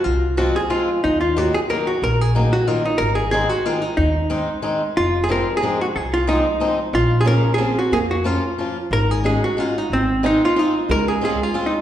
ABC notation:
X:1
M:3/4
L:1/16
Q:"Swing" 1/4=183
K:Abmix
V:1 name="Hollow-body jazz guitar"
F4 G2 A2 F4 | E2 F2 G2 A2 B2 G2 | B2 A4 G2 F2 E2 | B2 A2 A2 G2 F2 E2 |
E8 z4 | F3 A B3 A3 G2 | A2 F2 E6 z2 | F3 A B3 A3 G2 |
A2 G2 F6 z2 | B2 A2 A2 G2 F2 E2 | C4 E2 F2 E4 | B2 A2 A2 F3 E3 |]
V:2 name="Hollow-body jazz guitar"
z12 | z12 | z12 | z12 |
z12 | z12 | z12 | z4 D4 C4 |
B,3 z8 z | z12 | z4 E4 F4 | A,8 z4 |]
V:3 name="Steel-string acoustic guitar"
z4 [F,A,CF]2 z2 [F,A,CF]2 z2 | z4 [E,G,B,E]2 z2 [E,G,B,E]2 z2 | z4 [E,G,B,E]2 z2 [E,G,B,E]2 z2 | z4 [E,A,CE]2 z2 [E,A,CE]2 z2 |
z4 [E,A,CE]2 z2 [E,A,CE]2 z2 | z4 [F,A,CE]2 z2 [F,A,CE]2 z2 | z4 [F,A,CE]2 z2 [F,A,CE]2 z2 | z4 [F,B,DF]2 z2 [F,B,DF]2 z2 |
z4 [F,B,DF]2 z2 [F,B,DF]2 z2 | z4 [A,DEG]2 z2 [A,DEG]2 z2 | z4 [A,CEF]2 z2 [A,CEF]2 z2 | z4 [A,CDF]2 z2 [A,CDF]2 z2 |]
V:4 name="Upright bass" clef=bass
C,,8 z4 | E,,8 z4 | B,,,8 z4 | A,,,8 z4 |
E,,8 z4 | F,,,8 z4 | C,,8 z4 | B,,,8 z4 |
F,,8 z4 | A,,,8 z4 | A,,,8 z4 | D,,8 z4 |]